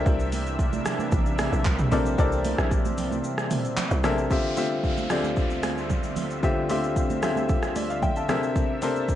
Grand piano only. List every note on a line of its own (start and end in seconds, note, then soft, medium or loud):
0.00 0.64 C3 loud
0.00 0.64 C4 medium
0.00 0.65 D4 medium
0.00 0.65 A4 medium
0.00 0.65 A#4 medium
0.00 1.93 D5 medium
0.00 0.65 E5 loud
1.91 2.13 C3 medium
1.91 2.13 C4 medium
1.91 2.13 D4 medium
1.91 2.13 A4 medium
1.91 2.13 A#4 medium
1.91 2.14 D5 loud
2.18 3.03 C3 medium
2.18 3.03 C4 medium
2.18 3.04 D4 medium
2.18 3.04 A4 medium
2.18 3.04 A#4 medium
2.18 3.04 D5 loud
4.03 4.25 C3 medium
4.03 4.25 C4 medium
4.03 4.26 D4 medium
4.03 4.26 A4 medium
4.03 4.26 A#4 medium
4.03 4.26 E5 loud
4.30 4.52 D3 medium
4.30 4.52 C4 medium
4.30 4.52 F4 medium
4.30 4.52 G4 medium
4.30 4.53 E5 medium
4.57 5.00 D3 medium
4.57 5.00 C4 medium
4.57 5.00 F4 medium
4.57 5.00 G4 medium
4.57 5.01 E5 loud
5.10 5.95 D3 medium
5.10 5.95 C4 medium
5.10 5.96 F4 medium
5.10 5.96 G4 medium
5.10 5.96 D5 medium
6.43 6.64 D3 medium
6.43 6.64 C4 medium
6.43 6.65 F4 medium
6.43 6.65 G4 medium
6.43 6.65 E5 medium
6.69 7.12 D3 medium
6.69 7.12 C4 medium
6.69 7.13 F4 medium
6.69 7.13 G4 medium
6.69 7.13 E5 medium
7.22 8.08 D3 medium
7.22 8.08 C4 medium
7.22 8.08 F4 medium
7.22 8.08 G4 medium
7.22 7.76 E5 medium
7.76 7.89 D5 medium
7.90 8.02 D5 medium
7.90 8.02 F5 medium
8.03 8.16 E5 medium
8.03 8.16 G5 medium
8.17 8.42 F5 medium
8.17 8.42 A5 medium
8.29 8.72 C3 medium
8.29 8.72 C4 medium
8.29 8.72 D4 medium
8.29 8.72 A4 medium
8.29 8.72 A#4 medium
8.29 8.72 E5 loud
8.82 9.15 C3 medium
8.82 9.15 C4 medium
8.82 9.15 D4 medium
8.82 9.15 A4 medium
8.82 9.15 A#4 medium
8.82 9.15 C5 loud